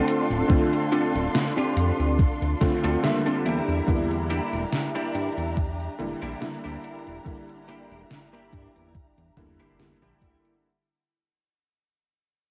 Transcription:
Already playing: D3 A3 C4 D4 F4 A4 C6
0.08 closed hi-hat
0.31 D1, closed hi-hat
0.48 D3 A3 C4 F4, kick, closed hi-hat
0.73 closed hi-hat
0.92 C4 D4 F4 A4, closed hi-hat
1.15 D1, closed hi-hat
1.35 snare, closed hi-hat
1.57 C4 D4 F4 G4, closed hi-hat
1.77 F2, closed hi-hat
2.00 D2, closed hi-hat
2.19 kick, closed hi-hat
2.42 D2, closed hi-hat
2.61 D3 A3 C4 F4, kick, snare, closed hi-hat
2.84 D2 C4 D4 F4 A4, closed hi-hat
3.03 D3 G3 A#3 E5, snare, closed hi-hat
3.26 C4 D4 F4 A4, closed hi-hat
3.46 E2 A#3 D4 E4 G4 E5 A#5, closed hi-hat
3.68 E2, closed hi-hat
3.87 E2 D3 G3 A#3 E4, kick, closed hi-hat
4.11 closed hi-hat
4.30 A#3 D4 E4 G4, closed hi-hat
4.53 E1, closed hi-hat
4.73 snare, closed hi-hat
4.95 A#3 D4 E4 G4, closed hi-hat
5.15 G2, closed hi-hat
5.38 E2, closed hi-hat
5.57 kick, closed hi-hat
5.80 closed hi-hat
5.98 E1 D3 G3 A#3 E4, closed hi-hat
6.22 A#1 A#3 D4 E4 G4, closed hi-hat
6.41 D3 G3 A#3 E4, snare, closed hi-hat
6.64 D2 A#3 D4 E4 G4, closed hi-hat
6.84 closed hi-hat
7.07 E1, closed hi-hat
7.24 D3 G3 A#3 E4, kick, closed hi-hat
7.49 closed hi-hat
7.68 A#3 D4 E4 G4, closed hi-hat
7.91 E1, closed hi-hat
8.11 snare, closed hi-hat
8.33 A#3 D4 E4 G4, closed hi-hat
8.53 G2, kick, closed hi-hat
8.76 E2, closed hi-hat
8.95 kick, closed hi-hat
9.18 E2, closed hi-hat
9.37 E2 D3 G3 A#3 E4, kick, snare, closed hi-hat
9.60 E1 A#3 D4 E4 G4, closed hi-hat
9.79 E2 D3 G3 A#3 E4, snare, closed hi-hat
10.02 A#1 A#3 D4 E4 G4, closed hi-hat
10.22 D2, kick, closed hi-hat
10.45 closed hi-hat

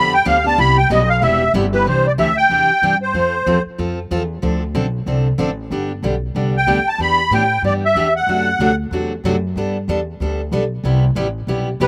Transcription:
Already playing: F2 D3 F3 B3 D4 G4 B5
0.14 G5
0.25 D2 D3 F3 B3 D4 G4 F5
0.44 B3 D4 G4 A5
0.58 C2 C3 G3 B3 E4 G4 B5
0.78 G5
0.90 B1 C3 G3 B3 E4 G4 D#5
1.09 F5
1.22 E1 C3 G3 B3 E4 G4 E5
1.54 G1 C3 G3 B3 E4 G4
1.73 B3 E4 G4 B4
1.86 C2 C3 E3 D4 G4 C5
2.07 D5
2.18 D2 C3 E3 D4 G4 E5
2.37 G5
2.49 E2 C3 E3 D4 G4
2.69 muted upright bass stroke
2.82 G2 C3 E3 D4 G4
3.02 C5
3.14 F2 F3 C4 F4 A4
3.46 E2 F3 C4 F4 A4
3.66 muted upright bass stroke
3.78 F2 F3 C4 F4 A4
4.11 E2 F3 C4 F4 A4
4.42 D2 D3 F3 C4 D4 A4
4.75 B1 D3 F3 C4 D4 A4
5.06 C2 D3 F3 C4 D4 A4
5.38 A1 D3 F3 C4 D4 A4
5.71 G1 D3 G3 B3 D4 G4
6.03 B1 D3 G3 B3 D4 G4
6.35 C2 D3 G3 B3 D4 G4
6.57 G5
6.67 D2 D3 G3 B3 D4 G4
6.85 A5, muted upright bass stroke
6.98 E2 E3 B3 D4 G4 B5
7.31 A2 E3 B3 D4 G4 G5
7.62 G2 E3 B3 D4 G4 D5
7.85 E5
7.95 E2 E3 B3 D4 G4
8.16 F#5
8.27 F#2 C3 F#3 A3 D4 F#4
8.59 D2 C3 F#3 A3 D4 F#4
8.91 E2 C3 F#3 A3 D4 F#4
9.24 F#2 C3 F#3 A3 D4 F#4
9.56 G2 G3 B3 D4 A4
9.88 E2 G3 B3 D4 A4
10.20 D2 G3 B3 D4 A4
10.51 B1 G3 B3 D4 A4
10.84 C2 C3 G3 B3 E4 G4
11.15 A1 C3 G3 B3 E4 G4
11.47 B1 C3 G3 B3 E4 G4
11.80 C2 C3 G3 B3 E4 G4 B4

